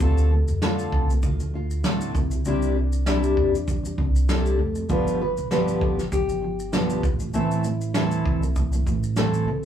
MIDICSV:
0, 0, Header, 1, 5, 480
1, 0, Start_track
1, 0, Key_signature, 0, "major"
1, 0, Tempo, 610998
1, 8, Time_signature, 4, 2, 24, 8
1, 7581, End_track
2, 0, Start_track
2, 0, Title_t, "Nylon-string guitar"
2, 0, Program_c, 0, 24
2, 17, Note_on_c, 0, 69, 77
2, 483, Note_off_c, 0, 69, 0
2, 492, Note_on_c, 0, 69, 61
2, 984, Note_off_c, 0, 69, 0
2, 985, Note_on_c, 0, 65, 65
2, 1210, Note_off_c, 0, 65, 0
2, 1219, Note_on_c, 0, 65, 60
2, 1455, Note_off_c, 0, 65, 0
2, 1458, Note_on_c, 0, 64, 69
2, 1939, Note_off_c, 0, 64, 0
2, 1942, Note_on_c, 0, 62, 71
2, 2383, Note_off_c, 0, 62, 0
2, 2421, Note_on_c, 0, 62, 65
2, 3381, Note_on_c, 0, 69, 76
2, 3402, Note_off_c, 0, 62, 0
2, 3857, Note_off_c, 0, 69, 0
2, 3860, Note_on_c, 0, 71, 87
2, 4086, Note_off_c, 0, 71, 0
2, 4096, Note_on_c, 0, 71, 77
2, 4315, Note_off_c, 0, 71, 0
2, 4333, Note_on_c, 0, 71, 68
2, 4569, Note_off_c, 0, 71, 0
2, 4572, Note_on_c, 0, 69, 73
2, 4636, Note_off_c, 0, 69, 0
2, 4814, Note_on_c, 0, 67, 71
2, 5293, Note_on_c, 0, 65, 72
2, 5305, Note_off_c, 0, 67, 0
2, 5739, Note_off_c, 0, 65, 0
2, 5775, Note_on_c, 0, 64, 83
2, 6239, Note_off_c, 0, 64, 0
2, 6249, Note_on_c, 0, 64, 72
2, 7213, Note_on_c, 0, 69, 81
2, 7237, Note_off_c, 0, 64, 0
2, 7581, Note_off_c, 0, 69, 0
2, 7581, End_track
3, 0, Start_track
3, 0, Title_t, "Steel-string acoustic guitar"
3, 0, Program_c, 1, 25
3, 7, Note_on_c, 1, 50, 62
3, 12, Note_on_c, 1, 57, 62
3, 13, Note_on_c, 1, 60, 65
3, 16, Note_on_c, 1, 65, 61
3, 20, Note_on_c, 1, 69, 67
3, 235, Note_off_c, 1, 50, 0
3, 244, Note_on_c, 1, 50, 45
3, 250, Note_off_c, 1, 57, 0
3, 250, Note_off_c, 1, 60, 0
3, 252, Note_off_c, 1, 65, 0
3, 254, Note_off_c, 1, 69, 0
3, 268, Note_on_c, 1, 57, 54
3, 443, Note_off_c, 1, 50, 0
3, 454, Note_off_c, 1, 57, 0
3, 489, Note_on_c, 1, 50, 66
3, 493, Note_on_c, 1, 57, 66
3, 498, Note_on_c, 1, 60, 63
3, 503, Note_on_c, 1, 65, 71
3, 504, Note_on_c, 1, 69, 69
3, 858, Note_off_c, 1, 50, 0
3, 862, Note_off_c, 1, 57, 0
3, 865, Note_off_c, 1, 60, 0
3, 867, Note_off_c, 1, 65, 0
3, 867, Note_on_c, 1, 50, 39
3, 868, Note_off_c, 1, 69, 0
3, 885, Note_on_c, 1, 57, 42
3, 963, Note_off_c, 1, 50, 0
3, 972, Note_on_c, 1, 50, 43
3, 980, Note_off_c, 1, 57, 0
3, 991, Note_on_c, 1, 57, 48
3, 1091, Note_off_c, 1, 50, 0
3, 1100, Note_on_c, 1, 50, 41
3, 1111, Note_off_c, 1, 57, 0
3, 1120, Note_on_c, 1, 57, 45
3, 1198, Note_off_c, 1, 50, 0
3, 1207, Note_on_c, 1, 50, 48
3, 1217, Note_off_c, 1, 57, 0
3, 1225, Note_on_c, 1, 57, 54
3, 1404, Note_off_c, 1, 50, 0
3, 1413, Note_off_c, 1, 57, 0
3, 1450, Note_on_c, 1, 50, 63
3, 1455, Note_on_c, 1, 57, 62
3, 1456, Note_on_c, 1, 60, 61
3, 1465, Note_on_c, 1, 69, 67
3, 1683, Note_off_c, 1, 50, 0
3, 1686, Note_on_c, 1, 48, 48
3, 1691, Note_off_c, 1, 57, 0
3, 1692, Note_off_c, 1, 60, 0
3, 1696, Note_off_c, 1, 69, 0
3, 1709, Note_on_c, 1, 55, 47
3, 1810, Note_off_c, 1, 48, 0
3, 1819, Note_on_c, 1, 48, 38
3, 1830, Note_off_c, 1, 55, 0
3, 1839, Note_on_c, 1, 55, 43
3, 1921, Note_off_c, 1, 48, 0
3, 1925, Note_off_c, 1, 55, 0
3, 1930, Note_on_c, 1, 48, 67
3, 1935, Note_on_c, 1, 55, 59
3, 1942, Note_on_c, 1, 62, 68
3, 1945, Note_on_c, 1, 64, 68
3, 1946, Note_on_c, 1, 67, 71
3, 2158, Note_off_c, 1, 48, 0
3, 2167, Note_on_c, 1, 48, 47
3, 2171, Note_off_c, 1, 55, 0
3, 2174, Note_off_c, 1, 62, 0
3, 2176, Note_off_c, 1, 64, 0
3, 2176, Note_off_c, 1, 67, 0
3, 2188, Note_on_c, 1, 55, 54
3, 2364, Note_off_c, 1, 48, 0
3, 2374, Note_off_c, 1, 55, 0
3, 2403, Note_on_c, 1, 48, 68
3, 2408, Note_on_c, 1, 55, 61
3, 2412, Note_on_c, 1, 62, 63
3, 2417, Note_on_c, 1, 64, 71
3, 2422, Note_on_c, 1, 67, 75
3, 2772, Note_off_c, 1, 48, 0
3, 2780, Note_off_c, 1, 55, 0
3, 2781, Note_on_c, 1, 48, 38
3, 2782, Note_off_c, 1, 62, 0
3, 2784, Note_off_c, 1, 64, 0
3, 2787, Note_off_c, 1, 67, 0
3, 2801, Note_on_c, 1, 55, 42
3, 2873, Note_off_c, 1, 48, 0
3, 2882, Note_on_c, 1, 48, 51
3, 2898, Note_off_c, 1, 55, 0
3, 2907, Note_on_c, 1, 55, 56
3, 3001, Note_off_c, 1, 48, 0
3, 3010, Note_on_c, 1, 48, 43
3, 3025, Note_off_c, 1, 55, 0
3, 3034, Note_on_c, 1, 55, 52
3, 3115, Note_off_c, 1, 48, 0
3, 3125, Note_on_c, 1, 48, 54
3, 3135, Note_off_c, 1, 55, 0
3, 3146, Note_on_c, 1, 55, 56
3, 3323, Note_off_c, 1, 48, 0
3, 3333, Note_off_c, 1, 55, 0
3, 3366, Note_on_c, 1, 48, 68
3, 3372, Note_on_c, 1, 55, 61
3, 3375, Note_on_c, 1, 62, 66
3, 3376, Note_on_c, 1, 64, 70
3, 3379, Note_on_c, 1, 67, 71
3, 3591, Note_off_c, 1, 48, 0
3, 3601, Note_on_c, 1, 48, 51
3, 3609, Note_off_c, 1, 55, 0
3, 3611, Note_off_c, 1, 62, 0
3, 3611, Note_off_c, 1, 64, 0
3, 3613, Note_off_c, 1, 67, 0
3, 3619, Note_on_c, 1, 55, 52
3, 3725, Note_off_c, 1, 48, 0
3, 3734, Note_on_c, 1, 48, 42
3, 3745, Note_off_c, 1, 55, 0
3, 3753, Note_on_c, 1, 55, 44
3, 3841, Note_off_c, 1, 48, 0
3, 3841, Note_on_c, 1, 43, 57
3, 3842, Note_off_c, 1, 55, 0
3, 3844, Note_on_c, 1, 50, 61
3, 3845, Note_on_c, 1, 53, 65
3, 3852, Note_on_c, 1, 65, 69
3, 3853, Note_on_c, 1, 59, 66
3, 3855, Note_on_c, 1, 67, 71
3, 4073, Note_off_c, 1, 43, 0
3, 4082, Note_on_c, 1, 43, 51
3, 4086, Note_off_c, 1, 50, 0
3, 4086, Note_off_c, 1, 53, 0
3, 4090, Note_off_c, 1, 59, 0
3, 4090, Note_off_c, 1, 65, 0
3, 4091, Note_off_c, 1, 67, 0
3, 4095, Note_on_c, 1, 50, 53
3, 4104, Note_on_c, 1, 53, 53
3, 4281, Note_off_c, 1, 43, 0
3, 4288, Note_off_c, 1, 50, 0
3, 4293, Note_off_c, 1, 53, 0
3, 4324, Note_on_c, 1, 43, 62
3, 4325, Note_on_c, 1, 50, 62
3, 4330, Note_on_c, 1, 53, 68
3, 4333, Note_on_c, 1, 59, 67
3, 4336, Note_on_c, 1, 65, 67
3, 4339, Note_on_c, 1, 67, 79
3, 4678, Note_off_c, 1, 43, 0
3, 4687, Note_on_c, 1, 43, 37
3, 4689, Note_off_c, 1, 50, 0
3, 4698, Note_on_c, 1, 50, 43
3, 4701, Note_off_c, 1, 53, 0
3, 4702, Note_off_c, 1, 59, 0
3, 4704, Note_off_c, 1, 65, 0
3, 4705, Note_off_c, 1, 67, 0
3, 4710, Note_on_c, 1, 53, 46
3, 4795, Note_off_c, 1, 43, 0
3, 4804, Note_on_c, 1, 43, 44
3, 4807, Note_off_c, 1, 50, 0
3, 4812, Note_off_c, 1, 53, 0
3, 4816, Note_on_c, 1, 50, 57
3, 4824, Note_on_c, 1, 53, 52
3, 4920, Note_off_c, 1, 43, 0
3, 4929, Note_on_c, 1, 43, 44
3, 4934, Note_off_c, 1, 50, 0
3, 4944, Note_on_c, 1, 50, 45
3, 4945, Note_off_c, 1, 53, 0
3, 4954, Note_on_c, 1, 53, 51
3, 5029, Note_off_c, 1, 43, 0
3, 5039, Note_on_c, 1, 43, 49
3, 5040, Note_off_c, 1, 50, 0
3, 5050, Note_on_c, 1, 50, 53
3, 5051, Note_off_c, 1, 53, 0
3, 5060, Note_on_c, 1, 53, 53
3, 5240, Note_off_c, 1, 43, 0
3, 5245, Note_off_c, 1, 50, 0
3, 5251, Note_off_c, 1, 53, 0
3, 5281, Note_on_c, 1, 43, 62
3, 5287, Note_on_c, 1, 50, 65
3, 5288, Note_on_c, 1, 53, 61
3, 5290, Note_on_c, 1, 59, 70
3, 5293, Note_on_c, 1, 65, 74
3, 5297, Note_on_c, 1, 67, 75
3, 5522, Note_off_c, 1, 43, 0
3, 5525, Note_on_c, 1, 45, 48
3, 5527, Note_off_c, 1, 50, 0
3, 5528, Note_off_c, 1, 53, 0
3, 5529, Note_off_c, 1, 59, 0
3, 5530, Note_off_c, 1, 65, 0
3, 5532, Note_off_c, 1, 67, 0
3, 5538, Note_on_c, 1, 52, 53
3, 5547, Note_on_c, 1, 57, 50
3, 5647, Note_off_c, 1, 45, 0
3, 5656, Note_on_c, 1, 45, 40
3, 5659, Note_off_c, 1, 52, 0
3, 5668, Note_on_c, 1, 52, 44
3, 5669, Note_off_c, 1, 57, 0
3, 5678, Note_on_c, 1, 57, 46
3, 5752, Note_off_c, 1, 45, 0
3, 5756, Note_off_c, 1, 52, 0
3, 5760, Note_off_c, 1, 57, 0
3, 5762, Note_on_c, 1, 45, 63
3, 5766, Note_on_c, 1, 52, 64
3, 5769, Note_on_c, 1, 57, 65
3, 5772, Note_on_c, 1, 60, 68
3, 5774, Note_on_c, 1, 64, 66
3, 5778, Note_on_c, 1, 69, 69
3, 6001, Note_off_c, 1, 45, 0
3, 6007, Note_off_c, 1, 52, 0
3, 6008, Note_off_c, 1, 57, 0
3, 6010, Note_off_c, 1, 60, 0
3, 6011, Note_off_c, 1, 64, 0
3, 6011, Note_on_c, 1, 45, 45
3, 6013, Note_off_c, 1, 69, 0
3, 6021, Note_on_c, 1, 52, 54
3, 6031, Note_on_c, 1, 57, 53
3, 6206, Note_off_c, 1, 45, 0
3, 6211, Note_off_c, 1, 52, 0
3, 6216, Note_off_c, 1, 57, 0
3, 6240, Note_on_c, 1, 45, 66
3, 6245, Note_on_c, 1, 57, 62
3, 6247, Note_on_c, 1, 52, 65
3, 6249, Note_on_c, 1, 60, 64
3, 6253, Note_on_c, 1, 64, 75
3, 6257, Note_on_c, 1, 69, 63
3, 6607, Note_off_c, 1, 45, 0
3, 6617, Note_on_c, 1, 45, 39
3, 6619, Note_off_c, 1, 57, 0
3, 6620, Note_off_c, 1, 52, 0
3, 6620, Note_off_c, 1, 60, 0
3, 6623, Note_off_c, 1, 64, 0
3, 6624, Note_off_c, 1, 69, 0
3, 6632, Note_on_c, 1, 52, 41
3, 6639, Note_on_c, 1, 57, 43
3, 6717, Note_off_c, 1, 45, 0
3, 6726, Note_on_c, 1, 45, 48
3, 6730, Note_off_c, 1, 52, 0
3, 6738, Note_off_c, 1, 57, 0
3, 6739, Note_on_c, 1, 52, 50
3, 6750, Note_on_c, 1, 57, 58
3, 6838, Note_off_c, 1, 45, 0
3, 6847, Note_on_c, 1, 45, 49
3, 6852, Note_off_c, 1, 52, 0
3, 6861, Note_on_c, 1, 52, 48
3, 6863, Note_off_c, 1, 57, 0
3, 6873, Note_on_c, 1, 57, 52
3, 6949, Note_off_c, 1, 45, 0
3, 6958, Note_on_c, 1, 45, 49
3, 6961, Note_off_c, 1, 52, 0
3, 6970, Note_on_c, 1, 52, 59
3, 6974, Note_off_c, 1, 57, 0
3, 6982, Note_on_c, 1, 57, 61
3, 7160, Note_off_c, 1, 45, 0
3, 7166, Note_off_c, 1, 52, 0
3, 7172, Note_off_c, 1, 57, 0
3, 7203, Note_on_c, 1, 45, 60
3, 7203, Note_on_c, 1, 52, 63
3, 7210, Note_on_c, 1, 57, 62
3, 7212, Note_on_c, 1, 60, 65
3, 7214, Note_on_c, 1, 64, 64
3, 7220, Note_on_c, 1, 69, 70
3, 7432, Note_off_c, 1, 45, 0
3, 7442, Note_on_c, 1, 45, 50
3, 7446, Note_off_c, 1, 52, 0
3, 7449, Note_off_c, 1, 57, 0
3, 7450, Note_off_c, 1, 60, 0
3, 7451, Note_off_c, 1, 64, 0
3, 7454, Note_off_c, 1, 69, 0
3, 7455, Note_on_c, 1, 52, 50
3, 7462, Note_on_c, 1, 57, 49
3, 7558, Note_off_c, 1, 45, 0
3, 7573, Note_off_c, 1, 52, 0
3, 7581, Note_off_c, 1, 57, 0
3, 7581, End_track
4, 0, Start_track
4, 0, Title_t, "Upright bass"
4, 0, Program_c, 2, 32
4, 2, Note_on_c, 2, 38, 81
4, 347, Note_off_c, 2, 38, 0
4, 378, Note_on_c, 2, 41, 63
4, 699, Note_off_c, 2, 41, 0
4, 728, Note_on_c, 2, 36, 71
4, 949, Note_off_c, 2, 36, 0
4, 970, Note_on_c, 2, 38, 76
4, 1417, Note_off_c, 2, 38, 0
4, 1446, Note_on_c, 2, 33, 69
4, 1667, Note_off_c, 2, 33, 0
4, 1688, Note_on_c, 2, 36, 74
4, 1909, Note_off_c, 2, 36, 0
4, 1930, Note_on_c, 2, 36, 81
4, 2617, Note_off_c, 2, 36, 0
4, 2647, Note_on_c, 2, 40, 77
4, 3095, Note_off_c, 2, 40, 0
4, 3127, Note_on_c, 2, 36, 75
4, 3575, Note_off_c, 2, 36, 0
4, 3604, Note_on_c, 2, 29, 75
4, 3826, Note_off_c, 2, 29, 0
4, 3846, Note_on_c, 2, 31, 84
4, 4189, Note_off_c, 2, 31, 0
4, 4224, Note_on_c, 2, 35, 65
4, 4542, Note_off_c, 2, 35, 0
4, 4568, Note_on_c, 2, 31, 74
4, 4789, Note_off_c, 2, 31, 0
4, 4808, Note_on_c, 2, 31, 84
4, 5256, Note_off_c, 2, 31, 0
4, 5293, Note_on_c, 2, 35, 72
4, 5511, Note_off_c, 2, 35, 0
4, 5527, Note_on_c, 2, 33, 77
4, 5748, Note_off_c, 2, 33, 0
4, 5767, Note_on_c, 2, 33, 78
4, 6456, Note_off_c, 2, 33, 0
4, 6487, Note_on_c, 2, 36, 75
4, 6936, Note_off_c, 2, 36, 0
4, 6967, Note_on_c, 2, 33, 76
4, 7416, Note_off_c, 2, 33, 0
4, 7447, Note_on_c, 2, 36, 75
4, 7581, Note_off_c, 2, 36, 0
4, 7581, End_track
5, 0, Start_track
5, 0, Title_t, "Drums"
5, 1, Note_on_c, 9, 82, 54
5, 3, Note_on_c, 9, 36, 87
5, 80, Note_off_c, 9, 82, 0
5, 82, Note_off_c, 9, 36, 0
5, 139, Note_on_c, 9, 82, 41
5, 218, Note_off_c, 9, 82, 0
5, 375, Note_on_c, 9, 82, 38
5, 454, Note_off_c, 9, 82, 0
5, 485, Note_on_c, 9, 38, 86
5, 491, Note_on_c, 9, 82, 54
5, 564, Note_off_c, 9, 38, 0
5, 570, Note_off_c, 9, 82, 0
5, 618, Note_on_c, 9, 82, 37
5, 697, Note_off_c, 9, 82, 0
5, 726, Note_on_c, 9, 36, 72
5, 805, Note_off_c, 9, 36, 0
5, 864, Note_on_c, 9, 82, 38
5, 942, Note_off_c, 9, 82, 0
5, 964, Note_on_c, 9, 82, 63
5, 966, Note_on_c, 9, 36, 67
5, 1042, Note_off_c, 9, 82, 0
5, 1045, Note_off_c, 9, 36, 0
5, 1100, Note_on_c, 9, 82, 41
5, 1178, Note_off_c, 9, 82, 0
5, 1339, Note_on_c, 9, 82, 41
5, 1418, Note_off_c, 9, 82, 0
5, 1446, Note_on_c, 9, 38, 88
5, 1447, Note_on_c, 9, 82, 56
5, 1525, Note_off_c, 9, 38, 0
5, 1525, Note_off_c, 9, 82, 0
5, 1579, Note_on_c, 9, 82, 44
5, 1657, Note_off_c, 9, 82, 0
5, 1686, Note_on_c, 9, 36, 81
5, 1690, Note_on_c, 9, 82, 38
5, 1765, Note_off_c, 9, 36, 0
5, 1768, Note_off_c, 9, 82, 0
5, 1814, Note_on_c, 9, 82, 39
5, 1892, Note_off_c, 9, 82, 0
5, 1925, Note_on_c, 9, 82, 55
5, 2003, Note_off_c, 9, 82, 0
5, 2061, Note_on_c, 9, 82, 44
5, 2140, Note_off_c, 9, 82, 0
5, 2297, Note_on_c, 9, 82, 40
5, 2376, Note_off_c, 9, 82, 0
5, 2406, Note_on_c, 9, 38, 86
5, 2412, Note_on_c, 9, 82, 56
5, 2484, Note_off_c, 9, 38, 0
5, 2490, Note_off_c, 9, 82, 0
5, 2540, Note_on_c, 9, 82, 41
5, 2618, Note_off_c, 9, 82, 0
5, 2648, Note_on_c, 9, 36, 71
5, 2727, Note_off_c, 9, 36, 0
5, 2788, Note_on_c, 9, 82, 40
5, 2866, Note_off_c, 9, 82, 0
5, 2889, Note_on_c, 9, 36, 67
5, 2890, Note_on_c, 9, 82, 64
5, 2968, Note_off_c, 9, 36, 0
5, 2969, Note_off_c, 9, 82, 0
5, 3025, Note_on_c, 9, 82, 44
5, 3104, Note_off_c, 9, 82, 0
5, 3127, Note_on_c, 9, 36, 62
5, 3206, Note_off_c, 9, 36, 0
5, 3265, Note_on_c, 9, 82, 39
5, 3343, Note_off_c, 9, 82, 0
5, 3370, Note_on_c, 9, 38, 96
5, 3371, Note_on_c, 9, 82, 55
5, 3449, Note_off_c, 9, 38, 0
5, 3449, Note_off_c, 9, 82, 0
5, 3502, Note_on_c, 9, 82, 44
5, 3580, Note_off_c, 9, 82, 0
5, 3734, Note_on_c, 9, 82, 42
5, 3813, Note_off_c, 9, 82, 0
5, 3844, Note_on_c, 9, 82, 52
5, 3847, Note_on_c, 9, 36, 84
5, 3923, Note_off_c, 9, 82, 0
5, 3925, Note_off_c, 9, 36, 0
5, 3986, Note_on_c, 9, 82, 46
5, 4065, Note_off_c, 9, 82, 0
5, 4221, Note_on_c, 9, 82, 38
5, 4300, Note_off_c, 9, 82, 0
5, 4328, Note_on_c, 9, 38, 84
5, 4333, Note_on_c, 9, 82, 55
5, 4406, Note_off_c, 9, 38, 0
5, 4412, Note_off_c, 9, 82, 0
5, 4461, Note_on_c, 9, 82, 40
5, 4539, Note_off_c, 9, 82, 0
5, 4567, Note_on_c, 9, 36, 79
5, 4646, Note_off_c, 9, 36, 0
5, 4705, Note_on_c, 9, 38, 27
5, 4708, Note_on_c, 9, 82, 42
5, 4783, Note_off_c, 9, 38, 0
5, 4787, Note_off_c, 9, 82, 0
5, 4808, Note_on_c, 9, 36, 70
5, 4811, Note_on_c, 9, 82, 64
5, 4887, Note_off_c, 9, 36, 0
5, 4889, Note_off_c, 9, 82, 0
5, 4942, Note_on_c, 9, 82, 40
5, 5021, Note_off_c, 9, 82, 0
5, 5180, Note_on_c, 9, 82, 42
5, 5259, Note_off_c, 9, 82, 0
5, 5287, Note_on_c, 9, 38, 87
5, 5287, Note_on_c, 9, 82, 54
5, 5366, Note_off_c, 9, 38, 0
5, 5366, Note_off_c, 9, 82, 0
5, 5418, Note_on_c, 9, 82, 44
5, 5497, Note_off_c, 9, 82, 0
5, 5526, Note_on_c, 9, 36, 82
5, 5530, Note_on_c, 9, 82, 39
5, 5604, Note_off_c, 9, 36, 0
5, 5608, Note_off_c, 9, 82, 0
5, 5653, Note_on_c, 9, 82, 42
5, 5731, Note_off_c, 9, 82, 0
5, 5763, Note_on_c, 9, 82, 56
5, 5842, Note_off_c, 9, 82, 0
5, 5903, Note_on_c, 9, 82, 45
5, 5981, Note_off_c, 9, 82, 0
5, 6001, Note_on_c, 9, 82, 42
5, 6080, Note_off_c, 9, 82, 0
5, 6136, Note_on_c, 9, 82, 38
5, 6215, Note_off_c, 9, 82, 0
5, 6240, Note_on_c, 9, 38, 93
5, 6246, Note_on_c, 9, 82, 54
5, 6319, Note_off_c, 9, 38, 0
5, 6324, Note_off_c, 9, 82, 0
5, 6373, Note_on_c, 9, 82, 38
5, 6452, Note_off_c, 9, 82, 0
5, 6485, Note_on_c, 9, 36, 74
5, 6564, Note_off_c, 9, 36, 0
5, 6621, Note_on_c, 9, 82, 41
5, 6700, Note_off_c, 9, 82, 0
5, 6723, Note_on_c, 9, 82, 63
5, 6726, Note_on_c, 9, 36, 70
5, 6802, Note_off_c, 9, 82, 0
5, 6804, Note_off_c, 9, 36, 0
5, 6855, Note_on_c, 9, 82, 42
5, 6933, Note_off_c, 9, 82, 0
5, 6965, Note_on_c, 9, 36, 62
5, 6967, Note_on_c, 9, 82, 42
5, 7043, Note_off_c, 9, 36, 0
5, 7046, Note_off_c, 9, 82, 0
5, 7096, Note_on_c, 9, 82, 41
5, 7174, Note_off_c, 9, 82, 0
5, 7199, Note_on_c, 9, 38, 89
5, 7200, Note_on_c, 9, 82, 55
5, 7278, Note_off_c, 9, 38, 0
5, 7278, Note_off_c, 9, 82, 0
5, 7335, Note_on_c, 9, 82, 48
5, 7413, Note_off_c, 9, 82, 0
5, 7581, End_track
0, 0, End_of_file